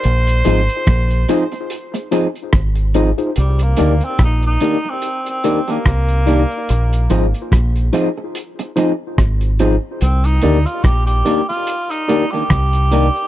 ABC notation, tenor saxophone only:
X:1
M:4/4
L:1/16
Q:"Swing 16ths" 1/4=72
K:Cm
V:1 name="Tenor saxophone"
c8- c2 z6 | G, B,2 C E E2 C2 C2 B,4- B,- | B,4- B, z8 z3 | C E2 F G G2 F2 E2 G4- G |]